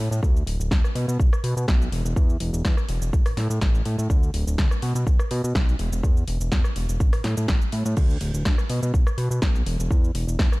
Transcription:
0.11 A2, cabasa
0.23 D2, kick, cabasa
0.37 cabasa
0.47 D1, open hi-hat
0.60 D1, cabasa
0.71 D2, kick, snare, cabasa
0.84 cross-stick, cabasa
0.95 B2, open hi-hat
1.08 B2, cabasa
1.20 B1, kick, cabasa
1.33 cross-stick, cabasa
1.44 B2, open hi-hat
1.57 B2, cabasa
1.68 B1, kick, snare, cabasa
1.82 cabasa
1.92 E1, open hi-hat
2.05 E1, cabasa
2.16 E2, kick, cabasa
2.30 cabasa
2.40 E1, open hi-hat
2.53 E1, cabasa
2.65 E2, kick, snare, cabasa
2.77 cross-stick, cabasa
2.89 E1, open hi-hat
3.02 E1, cabasa
3.13 A1, kick, cabasa
3.26 A2, cross-stick, open hi-hat, cabasa
3.37 A2, snare, open hi-hat
3.50 A2, cabasa
3.61 A1, kick, snare, cabasa
3.75 cabasa
3.85 A2, open hi-hat
3.98 A2, cabasa
4.10 D2, kick, cabasa
4.23 cabasa
4.34 D1, open hi-hat
4.47 D1, cabasa
4.58 D2, kick, snare, cabasa
4.71 cross-stick, cabasa
4.82 B2, open hi-hat
4.95 B2, cabasa
5.07 B1, kick, cabasa
5.19 cross-stick, cabasa
5.31 B2, open hi-hat
5.44 B2, cabasa
5.55 B1, kick, snare, cabasa
5.69 cabasa
5.79 E1, open hi-hat
5.92 E1, cabasa
6.03 E2, kick, cabasa
6.17 cabasa
6.28 E1, open hi-hat
6.41 E1, cabasa
6.52 E2, kick, snare, cabasa
6.64 cross-stick, cabasa
6.76 E1, open hi-hat
6.89 E1, cabasa
7.00 A1, kick, cabasa
7.13 A2, cross-stick, open hi-hat, cabasa
7.24 A2, snare, open hi-hat
7.37 A2, cabasa
7.48 A1, kick, snare, cabasa
7.62 cabasa
7.72 A2, open hi-hat
7.86 A2, cabasa
7.97 D2, kick, crash, cabasa
8.10 cabasa
8.21 D1, open hi-hat
8.34 D1, cabasa
8.45 D2, kick, snare, cabasa
8.58 cross-stick, cabasa
8.70 B2, open hi-hat
8.83 B2, cabasa
8.94 B1, kick, cabasa
9.07 cross-stick, cabasa
9.18 B2, open hi-hat
9.31 B2, cabasa
9.42 B1, kick, snare, cabasa
9.56 cabasa
9.66 E1, open hi-hat
9.79 E1, cabasa
9.90 E2, kick, cabasa
10.04 cabasa
10.15 E1, open hi-hat
10.27 E1, cabasa
10.39 E2, kick, snare, cabasa
10.52 cross-stick, cabasa

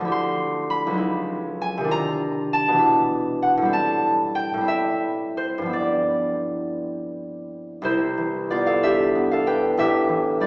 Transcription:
Already playing: D2 C#4 B4 F#5 G#5 A5 B5
0.01 F3
0.05 E4 G4
0.12 C6
0.70 B5
0.87 C#2 F#3
0.94 D#4 E4
1.62 G#5
1.77 C3 D#3
1.84 D4 F4
1.91 A#5
2.53 A5
2.68 B2 E3
2.75 D4
2.79 E4
3.42 F#5
3.57 A2
3.62 G3 C4
3.69 E4
3.73 A5
4.35 G5
4.54 A2
4.58 G3 C4
4.65 E4 E5
5.37 C5
5.58 G2 F3
5.66 B3 E4
5.73 D5
7.82 C2 C3 E4 C5
8.18 E3
8.50 B3 F4 D5
8.66 A4 F5
8.83 D4 G4 E5
9.15 B3
9.31 A4 F5
9.46 D4 B4 G5
9.77 A1 A2 G4 E5
10.09 E3
10.40 G3 F4 D5

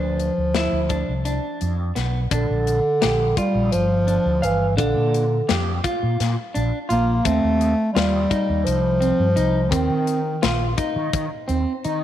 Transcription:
Already playing: D2 F3 D4
0.20 closed hi-hat
0.37 D2
0.54 E4, snare, closed hi-hat
0.72 D2
0.89 D4, kick, closed hi-hat
1.08 C2
1.25 D4, closed hi-hat
1.61 F2, closed hi-hat
1.95 B1 B3, snare, closed hi-hat
2.31 A#1 D3 D4, kick, closed hi-hat
2.49 A#1
2.67 closed hi-hat
3.02 A#1 G4, snare, closed hi-hat
3.37 G3 F4, kick, closed hi-hat
3.54 A#1
3.72 G1 F3, closed hi-hat
4.07 D4, closed hi-hat
4.25 D2
4.42 G1 E3 F5, closed hi-hat
4.77 A#1 D3 D4, kick, closed hi-hat
4.96 A#2
5.14 closed hi-hat
5.49 F2 G4, snare, closed hi-hat
5.84 F4, kick, closed hi-hat
6.03 A#2
6.20 A#2, snare, closed hi-hat
6.54 A#1 D4, closed hi-hat
6.89 A#1 A#3 F4, closed hi-hat
7.25 D#2 A3 C4, kick, closed hi-hat
7.43 D#2
7.61 closed hi-hat
7.92 D#2 G3 F4
7.97 snare, closed hi-hat
8.30 D#4, kick, closed hi-hat
8.49 D#2
8.65 C2 F3, closed hi-hat
9.01 C4, closed hi-hat
9.19 G2
9.36 C2 D#4, closed hi-hat
9.70 D#2 D#3 C4, kick, closed hi-hat
9.90 D#3
10.07 closed hi-hat
10.42 A#1 F4, snare, closed hi-hat
10.77 D#4, kick, closed hi-hat
10.96 D#3
11.13 D#3, kick, closed hi-hat
11.48 D#2 C4, closed hi-hat
11.84 D#3 D#4, closed hi-hat

